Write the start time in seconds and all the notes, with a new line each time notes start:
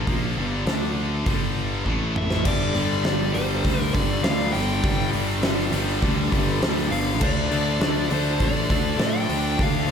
0.07 A#1 A#2 F3 A#3, kick, open hi-hat
0.37 G1 G2 D3 G3
0.66 D2 D3 A3 D4, snare, open hi-hat
1.25 G1 G2 D3 G3, kick, open hi-hat
1.86 A1 A2 E3 A3, kick
2.16 E5, mid tom
2.30 snare
2.45 G1 G2 D3 G3 D4 A4 D5, kick, crash
2.75 G1 G2 D3 G3, open hi-hat
3.04 G1 G2 D3 G3, snare, open hi-hat
3.34 G1 G2 D3 G3 C5, open hi-hat
3.65 D2 G2 D3 G3, kick, open hi-hat
3.82 A#4
3.94 G1 G2 D3 G3 D5, kick, open hi-hat
4.23 D2 G2 D3 G3 F5, snare, open hi-hat
4.40 snare
4.53 G1 G2 D3 G3 G5, open hi-hat
4.82 G1 G2 D3 G3, kick, open hi-hat
5.13 G1 G2 D3 G3, open hi-hat
5.43 G1 G2 D3 G3, snare, open hi-hat
5.72 G1 G2 D3 G3, open hi-hat
6.02 D2 G2 D3 G3, kick, open hi-hat
6.32 G1 G2 D3 G3, kick, open hi-hat
6.48 snare
6.62 D2 G2 D3 G3, snare, open hi-hat
6.78 snare
6.91 G1 G2 D3 G3 F5, open hi-hat
7.21 D2 D3 A3 D4 A4 D5, kick, crash
7.51 D2 D3 A3 D4, open hi-hat
7.81 D2 D3 A3 D4, snare, open hi-hat
8.10 D2 D3 A3 D4 C5, open hi-hat
8.39 A1 D3 A3 D4, kick, open hi-hat
8.44 D5
8.69 D2 D3 A3 D4, kick, open hi-hat
8.99 A2 D3 A3 D4, snare, open hi-hat
9.03 G5
9.28 D2 D3 A3 D4, open hi-hat
9.58 D2 D3 A3 D4, kick, open hi-hat
9.63 F5
9.88 D2